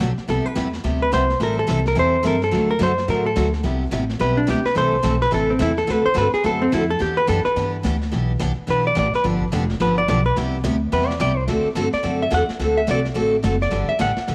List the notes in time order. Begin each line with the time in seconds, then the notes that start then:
0.00 B1 D3 F#3 B3 D4 G4, snare, hi-hat pedal
0.18 muted upright bass stroke, snare
0.28 C2 C3 G3 B3 E4 G4 A4, brush sweep, snare
0.46 B4
0.55 E2 C3 G3 B3 E4 G4, snare, hi-hat pedal
0.73 snare
0.84 D2 C3 G3 B3 E4 G4, brush sweep, snare
1.02 B4
1.12 C2 C3 G3 B3 E4 G4 C5, snare, hi-hat pedal
1.30 snare
1.40 A1 E3 G3 C4 E4 A4 A#4, brush sweep, snare
1.59 A4
1.67 C2 E3 G3 C4 E4 A4, snare, hi-hat pedal
1.86 A#4, snare
1.95 E2 E3 G3 C4 E4 A4, brush sweep, snare
1.99 C5
2.23 G2 E3 G3 C4 E4 A4, snare, hi-hat pedal
2.27 A#4
2.42 A4, snare
2.51 D2 D3 F#3 A3 D4 F#4, brush sweep, snare
2.71 A#4
2.79 F#2 D3 F#3 A3 D4 F#4, snare, hi-hat pedal
2.83 C5
2.98 snare
3.08 A2 D3 F#3 A3 D4 F#4 A#4, brush sweep, snare
3.26 A4
3.36 D2 D3 F#3 A3 D4 F#4, snare, hi-hat pedal
3.54 snare
3.63 C2 C3 G3 B3 E4 G4, brush sweep, snare
3.91 A1 C3 G3 B3 E4 G4, snare, hi-hat pedal
4.10 snare
4.19 B1 C3 G3 B3 E4 G4 B4, brush sweep, snare
4.37 D4
4.47 D2 C3 G3 B3 E4 G4, snare, hi-hat pedal
4.65 B4, muted upright bass stroke, snare
4.75 C2 C3 E3 A3 C4 E4 A4 C5, brush sweep, snare
5.03 B1 C3 E3 A3 C4 E4 A4, snare, hi-hat pedal
5.22 B4, snare
5.31 A1 C3 E3 A3 C4 E4 A4, brush sweep, snare
5.50 C4
5.59 E2 C3 E3 A3 C4 E4 A4, snare, hi-hat pedal
5.77 A4, snare
5.87 D2 D3 A3 C4 F#4 A4 B4, brush sweep, snare
6.06 C5, muted upright bass stroke
6.14 G2 D3 A3 C4 F#4 A4, snare, hi-hat pedal
6.18 B4
6.34 G#4, muted upright bass stroke, snare
6.44 F#2 D3 A3 C4 F#4 A4, brush sweep, snare
6.62 C4
6.72 F2 D3 A3 C4 E4 F#4 A4, snare, hi-hat pedal
6.90 A4
6.99 E2 E3 B3 D4 G4, brush sweep, snare
7.17 B4
7.27 F#2 E3 B3 D4 G4 A4, snare, hi-hat pedal
7.45 B4, muted upright bass stroke, snare
7.56 G2 E3 B3 D4 G4, brush sweep, snare
7.83 D2 E3 B3 D4 G4, snare, hi-hat pedal
8.02 snare
8.12 B1 E3 B3 D4 G4, brush sweep, snare
8.39 C2 E3 B3 D4 G4, snare, hi-hat pedal
8.57 muted upright bass stroke
8.67 B1 E3 B3 D4 G4 B4, brush sweep, snare
8.87 D5
8.95 A1 E3 B3 D4 G4 D5, snare, hi-hat pedal
9.14 B4, muted upright bass stroke, snare
9.24 G1 D3 F3 B3 D4 G4, brush sweep, snare
9.42 kick
9.52 F1 D3 F3 B3 D4 G4, snare, hi-hat pedal
9.70 snare
9.80 G1 D3 F3 B3 D4 G4 B4, brush sweep, snare
9.98 D5
10.08 B1 D3 F3 B3 D4 G4 D5, snare, hi-hat pedal
10.26 B4
10.36 C2 C3 G3 B3 E4 G4, brush sweep, snare
10.64 D2 C3 G3 B3 E4 G4, snare, hi-hat pedal
10.92 E2 C3 G3 B3 E4 G4 B4, brush sweep, snare
11.01 snare
11.08 D5, snare
11.20 C2 C3 G3 B3 E4 G4 D5, snare, hi-hat pedal
11.37 C5
11.47 D2 D3 A3 C4 F#4 A4, brush sweep, snare
11.64 muted upright bass stroke
11.75 G2 D3 A3 C4 F#4 A4, snare, hi-hat pedal
11.93 D5, muted upright bass stroke, snare
12.03 F#2 D3 A3 C4 F#4 A4, brush sweep, snare
12.22 E5
12.30 E2 D3 A3 C4 F#4 A4 F#5, snare, hi-hat pedal
12.49 muted upright bass stroke, snare
12.59 D2 D3 A3 C4 F#4 A4, brush sweep, snare
12.77 E5
12.87 C2 D3 A3 C4 F#4 A4 D5, snare, hi-hat pedal
13.05 snare
13.14 A1 D3 A3 C4 F#4 A4, brush sweep, snare
13.43 F#1 D3 A3 C4 F#4 A4, snare, hi-hat pedal
13.61 D5, snare
13.70 G1 D3 G3 B3 D4 G4, brush sweep, snare
13.89 E5, muted upright bass stroke
13.99 A1 D3 G3 B3 D4 G4 F#5, snare, hi-hat pedal
14.17 muted upright bass stroke, snare
14.28 B1 D3 G3 B3 D4 G4, brush sweep, snare